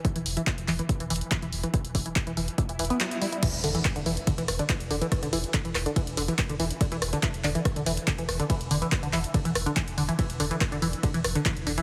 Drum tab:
CC |--------------------------------|--------------------------------|x-------------------------------|--------------------------------|
RD |--------------------------------|--------------------------------|x-------x-------x-------x-------|x-------x-------x-------x-------|
HH |x-x-o-x-x-x-o-x-x-x-oxx-x-x-o-x-|x-x-o-x-x-x-o-x-x-x-oxx-x-x-o-x-|x-x-o-x-x-x-o-x-x-x-o-x-x-x-o-x-|x-x-o-x-x-x-o-x-x-x-o-x-x-x-o-x-|
CP |--------x---x-----------x-------|--------x---------------x-------|--------x---------------x-------|--------x---x-----------x-------|
SD |--------------------------------|--------------------------------|--------r-----------r-----------|r-----------r-----------r-------|
BD |o-------o-------o-------o-------|o---o---o-------o---------------|o-------o-------o-------o-------|o-------o-------o-------o-------|

CC |--------------------------------|--------------------------------|--------------------------------|
RD |x-------x-------x-------x-------|x-------x-------x-------x-------|x-------x-------x-------x-------|
HH |x-x-o-x-x-x-o-x-x-x-o-x-x-x-o-x-|x-x-o-x-x-x-o-x-x-x-o-x-x-x-o-x-|x-x-o-x-x-x-o-x-x-x-o-x-x-x-o-x-|
CP |--------x---x-----------x-------|--------x---x-----------x-------|--------x---------------x-------|
SD |----r-----------r-----------r---|--------r-----------r-----------|--------r-----------r-----------|
BD |o-------o-------o-------o-------|o-------o-------o-------o-------|o-------o-------o-------o-------|